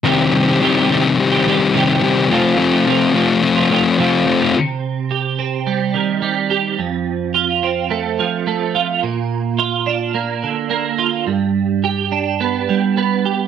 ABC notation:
X:1
M:4/4
L:1/16
Q:1/4=107
K:Cdor
V:1 name="Clean electric guitar"
[C,E,G,CG]3 [G,CG] [C,E,G,CG]2 [E,G,CG]3 [G,CG] [E,G,CG]2 [C,E,G,CG]3 [G,CG] | [F,,C,F,A,CF]3 [F,A,CF] [F,,C,F,A,CF]2 [F,A,CF]3 [F,A,CF] [F,A,CF]2 [F,,C,F,A,CF]3 [F,A,CF] | C,4 G2 C2 G,2 E,2 G,2 G2 | F,,4 F2 C2 A,2 F,2 A,2 F2 |
B,,4 F2 D2 B,2 D,2 B,2 F2 | G,,4 G2 D2 =B,2 G,2 B,2 G2 |]
V:2 name="Distorted electric guitar"
[C,E,G,CG]2 [C,E,G,CG]2 [C,E,G,CG]2 [C,E,G,CG]2 [C,E,G,CG]2 [C,E,G,CG]2 [C,E,G,CG]2 [C,E,G,CG]2 | [F,A,CF]2 [F,A,CF]2 [F,A,CF]2 [F,A,CF]2 [F,A,CF]2 [F,A,CF]2 [F,A,CF]2 [F,A,CF]2 | z16 | z16 |
z16 | z16 |]